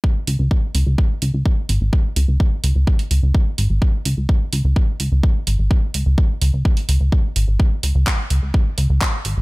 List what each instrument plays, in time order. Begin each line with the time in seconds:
0.04 kick
0.27 analog synth bass C#2, open hi-hat
0.39 analog synth bass C#2
0.51 kick
0.75 analog synth bass C#2, open hi-hat
0.86 analog synth bass C#2
0.98 kick
1.22 analog synth bass C#2, open hi-hat
1.34 analog synth bass C#2
1.46 kick
1.69 analog synth bass G#1, open hi-hat
1.81 analog synth bass G#1
1.93 kick
2.16 analog synth bass C#2, open hi-hat
2.28 analog synth bass C#2
2.40 kick
2.64 analog synth bass C#2, open hi-hat
2.76 analog synth bass C#2
2.87 kick
2.99 open hi-hat
3.11 analog synth bass C#2, open hi-hat
3.23 analog synth bass C#2
3.35 kick
3.58 analog synth bass G#1, open hi-hat
3.70 analog synth bass G#1
3.82 kick
4.05 analog synth bass C#2, open hi-hat
4.17 analog synth bass C#2
4.29 kick
4.53 analog synth bass C#2, open hi-hat
4.64 analog synth bass C#2
4.76 kick
5.00 analog synth bass C#2, open hi-hat
5.12 analog synth bass C#2
5.23 kick
5.47 analog synth bass G#1, open hi-hat
5.59 analog synth bass G#1
5.71 kick
5.94 analog synth bass C#2, open hi-hat
6.06 analog synth bass C#2
6.18 kick
6.42 analog synth bass C#2, open hi-hat
6.53 analog synth bass C#2
6.65 kick
6.77 open hi-hat
6.89 analog synth bass C#2, open hi-hat
7.00 analog synth bass C#2
7.12 kick
7.36 analog synth bass G#1, open hi-hat
7.48 analog synth bass G#1
7.60 kick
7.83 analog synth bass C#2, open hi-hat
7.95 analog synth bass C#2
8.07 kick, clap
8.30 analog synth bass C#2, open hi-hat
8.42 analog synth bass C#2
8.54 kick
8.78 analog synth bass C#2, open hi-hat
8.90 analog synth bass C#2
9.01 kick, clap
9.25 analog synth bass G#1, open hi-hat
9.37 analog synth bass G#1